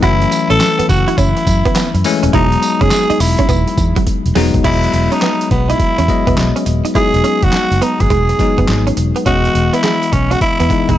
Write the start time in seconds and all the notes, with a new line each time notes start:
0.03 F#1 E3 F#3 A3 C#4 E4 F#4, kick, closed hi-hat
0.22 closed hi-hat
0.31 muted clean electric guitar stroke, closed hi-hat, tambourine
0.50 A1 C#4 A4, closed hi-hat
0.61 snare, clap, closed hi-hat, tambourine
0.79 B3, muted fingered electric bass stroke, closed hi-hat
0.89 F#1 F#4, muted clean electric guitar stroke, kick, closed hi-hat, tambourine
1.08 E4, closed hi-hat
1.18 F#1 C#4 E4, kick, closed hi-hat, tambourine
1.37 muted clean electric guitar stroke, closed hi-hat
1.47 F#2, kick, closed hi-hat, tambourine
1.65 B3, kick, closed hi-hat
1.75 B3, snare, clap, closed hi-hat, tambourine
1.94 F#2, muted clean electric guitar stroke, closed hi-hat
2.04 E3 G#3 A3 C#4, open hi-hat, tambourine
2.23 D#1 C#4, closed hi-hat
2.33 E1 F#3 G#3 B3 D#4 E4, kick, closed hi-hat
2.52 closed hi-hat
2.62 muted clean electric guitar stroke, closed hi-hat, tambourine
2.81 F#1 C#4 G#4, kick, closed hi-hat
2.91 snare, clap, closed hi-hat, tambourine
3.10 D#4, muted fingered electric bass stroke, closed hi-hat
3.20 E1 E4, muted clean electric guitar stroke, open hi-hat, tambourine
3.39 C#4, kick, closed hi-hat
3.49 E1 B3, kick, closed hi-hat, tambourine
3.67 muted clean electric guitar stroke, closed hi-hat
3.78 E2, kick, closed hi-hat, tambourine
3.96 F#3, kick, closed hi-hat
4.07 kick, closed hi-hat
4.26 E1, closed hi-hat
4.35 E1 F#3 G#3 B3 D#4, snare, open hi-hat
4.54 D#1, kick, closed hi-hat
4.64 E1 F#3 G#3 B3 E4 D#5, kick, closed hi-hat, crash
4.83 closed hi-hat
4.93 E1, muted clean electric guitar stroke, closed hi-hat
5.12 C#4 D#4, closed hi-hat
5.22 B3, snare, clap, closed hi-hat
5.41 closed hi-hat
5.51 B1 B3, muted clean electric guitar stroke, kick, closed hi-hat
5.69 D#4 E4, closed hi-hat
5.80 muted fingered electric bass stroke, kick, closed hi-hat
5.98 E2 C#4, closed hi-hat
6.08 F#3 G#3 B3 D#5, muted clean electric guitar stroke, kick, closed hi-hat
6.27 E1 B3, kick, closed hi-hat
6.38 B1, snare, clap, closed hi-hat
6.56 C#4, closed hi-hat
6.66 D#1, muted clean electric guitar stroke, closed hi-hat
6.85 D#4, closed hi-hat
6.95 F#3 G#3 B3 D#4 E4 G#4, kick, closed hi-hat
7.14 E1, muted clean electric guitar stroke, closed hi-hat
7.24 C#4, closed hi-hat
7.42 F#1 F#4, kick, closed hi-hat
7.53 muted fingered electric bass stroke, snare, clap, closed hi-hat
7.71 F#1, closed hi-hat
7.82 B3 D#4, closed hi-hat
8.00 G#1 G#4, kick, closed hi-hat
8.10 E1 G#3, kick, closed hi-hat
8.29 muted clean electric guitar stroke, closed hi-hat
8.39 F#3 G#3 B3 D#4, kick, closed hi-hat
8.58 F#1 B3, kick, closed hi-hat
8.68 G#1, snare, clap, closed hi-hat
8.87 C#4, closed hi-hat
8.97 E1, muted clean electric guitar stroke, closed hi-hat
9.16 B3, closed hi-hat
9.26 E1 E3 G#3 B3 C#4 F#4 D#5, kick, closed hi-hat
9.45 closed hi-hat
9.55 E1, muted clean electric guitar stroke, closed hi-hat
9.73 B3 E4, closed hi-hat
9.84 G#3, snare, clap, closed hi-hat
10.03 closed hi-hat
10.12 B1 C#4, muted clean electric guitar stroke, kick, closed hi-hat
10.31 C#4 F#4, closed hi-hat
10.41 E4, muted fingered electric bass stroke, kick, closed hi-hat
10.60 E2 B3, closed hi-hat
10.70 E3 G#3 B3 D#4, muted clean electric guitar stroke, kick, closed hi-hat
10.89 E1 G#3 D#4, kick, closed hi-hat